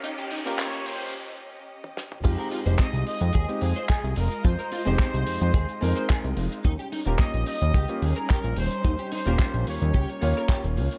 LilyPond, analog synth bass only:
\new Staff \with { instrumentName = "Analog synth bass" } { \clef bass \time 4/4 \key f \minor \tempo 4 = 109 r1 | f,16 r8 f,,16 r16 c,16 r16 f,16 ees,16 r16 f,16 r8 c,16 f,,16 r16 | f,16 r8 f,,16 r16 c,16 f,16 f,16 ees,16 r16 f,16 r8 c,16 f,,16 r16 | ees,16 r8 ees,,16 r16 bes,,16 r16 ees,16 des,16 r16 ees,16 r8 bes,,16 ees,,16 r16 |
ees,16 r8 ees,,16 r16 bes,,16 ees,16 ees,16 des,16 r16 ees,16 r8 ees,,16 des,16 r16 | }